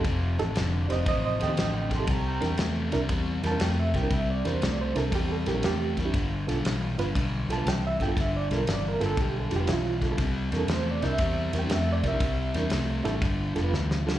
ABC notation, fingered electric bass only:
X:1
M:4/4
L:1/8
Q:"Swing" 1/4=118
K:C
V:1 name="Fingered electric bass" clef=bass
F,,, A,,, F,,, F,,, A,,, _E,, A,,,2 | C,, E,, E,, C,, E,, E,, F,, C,, | C,, E,, C,, C,, E,, _B,,, E,,2 | G,,, B,,, B,,, G,,, B,,, B,,, C,, G,,, |
G,,, B,,, G,,, G,,, B,,, F,,, B,,,2 | C,, E,, E,, C,, E,, E,, F,, C,, | C,, E,, C,, A,,, G,,, F,,, D,,2 |]